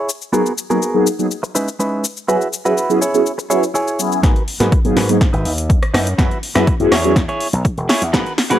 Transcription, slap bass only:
0, 0, Header, 1, 3, 480
1, 0, Start_track
1, 0, Key_signature, 5, "minor"
1, 0, Tempo, 487805
1, 328, Time_signature, 4, 2, 24, 8
1, 8453, End_track
2, 0, Start_track
2, 0, Title_t, "Slap bass"
2, 0, Program_c, 0, 36
2, 4167, Note_on_c, 0, 44, 92
2, 4263, Note_off_c, 0, 44, 0
2, 4528, Note_on_c, 0, 44, 86
2, 4620, Note_off_c, 0, 44, 0
2, 4769, Note_on_c, 0, 44, 75
2, 4860, Note_off_c, 0, 44, 0
2, 4887, Note_on_c, 0, 44, 86
2, 5206, Note_off_c, 0, 44, 0
2, 5248, Note_on_c, 0, 32, 86
2, 5340, Note_off_c, 0, 32, 0
2, 5363, Note_on_c, 0, 39, 89
2, 5684, Note_off_c, 0, 39, 0
2, 5844, Note_on_c, 0, 42, 95
2, 6033, Note_off_c, 0, 42, 0
2, 6086, Note_on_c, 0, 42, 90
2, 6182, Note_off_c, 0, 42, 0
2, 6450, Note_on_c, 0, 42, 88
2, 6540, Note_off_c, 0, 42, 0
2, 6689, Note_on_c, 0, 42, 74
2, 6780, Note_off_c, 0, 42, 0
2, 6804, Note_on_c, 0, 40, 87
2, 7124, Note_off_c, 0, 40, 0
2, 7409, Note_on_c, 0, 35, 78
2, 7500, Note_off_c, 0, 35, 0
2, 7648, Note_on_c, 0, 28, 96
2, 7739, Note_off_c, 0, 28, 0
2, 7889, Note_on_c, 0, 40, 78
2, 7980, Note_off_c, 0, 40, 0
2, 8006, Note_on_c, 0, 44, 91
2, 8102, Note_off_c, 0, 44, 0
2, 8369, Note_on_c, 0, 44, 89
2, 8453, Note_off_c, 0, 44, 0
2, 8453, End_track
3, 0, Start_track
3, 0, Title_t, "Muted slap bass strokes"
3, 7765, Note_on_c, 9, 29, 44
3, 7863, Note_off_c, 9, 29, 0
3, 8453, End_track
0, 0, End_of_file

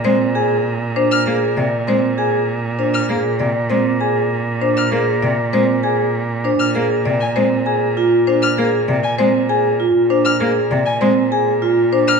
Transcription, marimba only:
0, 0, Header, 1, 2, 480
1, 0, Start_track
1, 0, Tempo, 304569
1, 1518, Time_signature, 6, 2, 24, 8
1, 19226, End_track
2, 0, Start_track
2, 0, Title_t, "Marimba"
2, 0, Program_c, 0, 12
2, 73, Note_on_c, 0, 72, 76
2, 388, Note_off_c, 0, 72, 0
2, 558, Note_on_c, 0, 80, 60
2, 870, Note_off_c, 0, 80, 0
2, 1516, Note_on_c, 0, 72, 75
2, 1829, Note_off_c, 0, 72, 0
2, 2000, Note_on_c, 0, 70, 56
2, 2310, Note_off_c, 0, 70, 0
2, 2485, Note_on_c, 0, 74, 58
2, 2792, Note_off_c, 0, 74, 0
2, 2968, Note_on_c, 0, 72, 70
2, 3274, Note_off_c, 0, 72, 0
2, 3446, Note_on_c, 0, 80, 57
2, 3753, Note_off_c, 0, 80, 0
2, 4393, Note_on_c, 0, 72, 62
2, 4708, Note_off_c, 0, 72, 0
2, 4872, Note_on_c, 0, 70, 54
2, 5188, Note_off_c, 0, 70, 0
2, 5353, Note_on_c, 0, 74, 61
2, 5668, Note_off_c, 0, 74, 0
2, 5826, Note_on_c, 0, 72, 65
2, 6146, Note_off_c, 0, 72, 0
2, 6311, Note_on_c, 0, 80, 58
2, 6627, Note_off_c, 0, 80, 0
2, 7274, Note_on_c, 0, 72, 70
2, 7588, Note_off_c, 0, 72, 0
2, 7755, Note_on_c, 0, 70, 56
2, 8069, Note_off_c, 0, 70, 0
2, 8234, Note_on_c, 0, 74, 63
2, 8549, Note_off_c, 0, 74, 0
2, 8720, Note_on_c, 0, 72, 74
2, 9031, Note_off_c, 0, 72, 0
2, 9192, Note_on_c, 0, 80, 59
2, 9508, Note_off_c, 0, 80, 0
2, 10163, Note_on_c, 0, 72, 66
2, 10471, Note_off_c, 0, 72, 0
2, 10633, Note_on_c, 0, 70, 58
2, 10948, Note_off_c, 0, 70, 0
2, 11118, Note_on_c, 0, 74, 63
2, 11430, Note_off_c, 0, 74, 0
2, 11598, Note_on_c, 0, 72, 77
2, 11910, Note_off_c, 0, 72, 0
2, 12072, Note_on_c, 0, 80, 62
2, 12388, Note_off_c, 0, 80, 0
2, 13038, Note_on_c, 0, 72, 68
2, 13350, Note_off_c, 0, 72, 0
2, 13520, Note_on_c, 0, 70, 62
2, 13830, Note_off_c, 0, 70, 0
2, 14000, Note_on_c, 0, 74, 59
2, 14311, Note_off_c, 0, 74, 0
2, 14475, Note_on_c, 0, 72, 84
2, 14789, Note_off_c, 0, 72, 0
2, 14965, Note_on_c, 0, 80, 71
2, 15272, Note_off_c, 0, 80, 0
2, 15920, Note_on_c, 0, 72, 76
2, 16231, Note_off_c, 0, 72, 0
2, 16397, Note_on_c, 0, 70, 61
2, 16709, Note_off_c, 0, 70, 0
2, 16878, Note_on_c, 0, 74, 69
2, 17190, Note_off_c, 0, 74, 0
2, 17351, Note_on_c, 0, 72, 75
2, 17667, Note_off_c, 0, 72, 0
2, 17838, Note_on_c, 0, 80, 65
2, 18150, Note_off_c, 0, 80, 0
2, 18795, Note_on_c, 0, 72, 76
2, 19109, Note_off_c, 0, 72, 0
2, 19226, End_track
0, 0, End_of_file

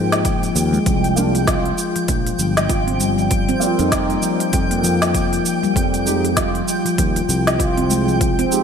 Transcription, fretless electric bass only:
0, 0, Header, 1, 2, 480
1, 0, Start_track
1, 0, Tempo, 612245
1, 675, Time_signature, 4, 2, 24, 8
1, 6768, End_track
2, 0, Start_track
2, 0, Title_t, "Fretless electric bass"
2, 0, Program_c, 0, 35
2, 0, Note_on_c, 0, 44, 83
2, 381, Note_off_c, 0, 44, 0
2, 436, Note_on_c, 0, 39, 98
2, 607, Note_off_c, 0, 39, 0
2, 676, Note_on_c, 0, 36, 90
2, 1341, Note_off_c, 0, 36, 0
2, 1635, Note_on_c, 0, 34, 84
2, 1806, Note_off_c, 0, 34, 0
2, 1873, Note_on_c, 0, 31, 75
2, 2779, Note_off_c, 0, 31, 0
2, 2974, Note_on_c, 0, 41, 79
2, 3259, Note_off_c, 0, 41, 0
2, 3555, Note_on_c, 0, 41, 85
2, 4220, Note_off_c, 0, 41, 0
2, 4514, Note_on_c, 0, 41, 95
2, 5180, Note_off_c, 0, 41, 0
2, 5475, Note_on_c, 0, 39, 80
2, 5646, Note_off_c, 0, 39, 0
2, 5715, Note_on_c, 0, 36, 81
2, 6620, Note_off_c, 0, 36, 0
2, 6768, End_track
0, 0, End_of_file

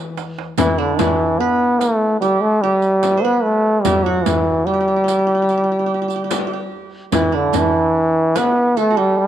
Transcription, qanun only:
0, 0, Header, 1, 2, 480
1, 0, Start_track
1, 0, Tempo, 818554
1, 340, Time_signature, 4, 2, 24, 8
1, 5437, End_track
2, 0, Start_track
2, 0, Title_t, "Qanun"
2, 0, Program_c, 0, 107
2, 341, Note_on_c, 0, 64, 74
2, 460, Note_on_c, 0, 62, 68
2, 578, Note_off_c, 0, 64, 0
2, 580, Note_on_c, 0, 64, 66
2, 823, Note_on_c, 0, 71, 76
2, 1301, Note_on_c, 0, 67, 74
2, 1336, Note_off_c, 0, 62, 0
2, 1397, Note_off_c, 0, 64, 0
2, 1464, Note_off_c, 0, 71, 0
2, 1543, Note_off_c, 0, 67, 0
2, 1545, Note_on_c, 0, 67, 75
2, 1861, Note_on_c, 0, 72, 59
2, 1903, Note_on_c, 0, 71, 73
2, 1939, Note_off_c, 0, 72, 0
2, 2263, Note_off_c, 0, 67, 0
2, 2266, Note_on_c, 0, 67, 69
2, 2382, Note_on_c, 0, 66, 74
2, 2417, Note_off_c, 0, 67, 0
2, 2544, Note_off_c, 0, 71, 0
2, 2737, Note_on_c, 0, 67, 57
2, 2772, Note_off_c, 0, 66, 0
2, 2775, Note_off_c, 0, 67, 0
2, 2777, Note_on_c, 0, 67, 45
2, 2816, Note_off_c, 0, 67, 0
2, 2818, Note_on_c, 0, 67, 48
2, 2859, Note_off_c, 0, 67, 0
2, 2861, Note_on_c, 0, 67, 40
2, 2908, Note_off_c, 0, 67, 0
2, 2911, Note_on_c, 0, 67, 45
2, 2953, Note_off_c, 0, 67, 0
2, 2956, Note_on_c, 0, 67, 39
2, 2991, Note_off_c, 0, 67, 0
2, 2994, Note_on_c, 0, 67, 49
2, 3041, Note_off_c, 0, 67, 0
2, 3043, Note_on_c, 0, 67, 40
2, 3087, Note_off_c, 0, 67, 0
2, 3089, Note_on_c, 0, 67, 46
2, 3133, Note_off_c, 0, 67, 0
2, 3136, Note_on_c, 0, 67, 41
2, 3176, Note_off_c, 0, 67, 0
2, 3179, Note_on_c, 0, 67, 44
2, 3225, Note_off_c, 0, 67, 0
2, 3227, Note_on_c, 0, 67, 39
2, 3267, Note_off_c, 0, 67, 0
2, 3269, Note_on_c, 0, 67, 44
2, 3304, Note_off_c, 0, 67, 0
2, 3306, Note_on_c, 0, 67, 39
2, 3350, Note_off_c, 0, 67, 0
2, 3352, Note_on_c, 0, 67, 40
2, 3394, Note_off_c, 0, 67, 0
2, 3396, Note_on_c, 0, 67, 38
2, 3436, Note_off_c, 0, 67, 0
2, 3438, Note_on_c, 0, 67, 42
2, 3482, Note_off_c, 0, 67, 0
2, 3484, Note_on_c, 0, 67, 36
2, 3526, Note_off_c, 0, 67, 0
2, 3529, Note_on_c, 0, 67, 44
2, 3564, Note_off_c, 0, 67, 0
2, 3567, Note_on_c, 0, 67, 38
2, 3609, Note_off_c, 0, 67, 0
2, 3611, Note_on_c, 0, 67, 44
2, 3658, Note_off_c, 0, 67, 0
2, 3660, Note_on_c, 0, 67, 39
2, 3696, Note_off_c, 0, 67, 0
2, 3698, Note_on_c, 0, 67, 49
2, 3741, Note_off_c, 0, 67, 0
2, 3744, Note_on_c, 0, 67, 44
2, 3791, Note_off_c, 0, 67, 0
2, 3794, Note_on_c, 0, 67, 50
2, 3829, Note_off_c, 0, 67, 0
2, 3832, Note_on_c, 0, 67, 44
2, 4183, Note_on_c, 0, 64, 63
2, 4294, Note_on_c, 0, 62, 62
2, 4412, Note_off_c, 0, 64, 0
2, 4414, Note_on_c, 0, 64, 65
2, 4569, Note_off_c, 0, 67, 0
2, 4899, Note_on_c, 0, 71, 70
2, 5143, Note_on_c, 0, 69, 74
2, 5170, Note_off_c, 0, 62, 0
2, 5222, Note_on_c, 0, 66, 52
2, 5231, Note_off_c, 0, 64, 0
2, 5260, Note_on_c, 0, 67, 72
2, 5295, Note_off_c, 0, 66, 0
2, 5437, Note_off_c, 0, 67, 0
2, 5437, Note_off_c, 0, 69, 0
2, 5437, Note_off_c, 0, 71, 0
2, 5437, End_track
0, 0, End_of_file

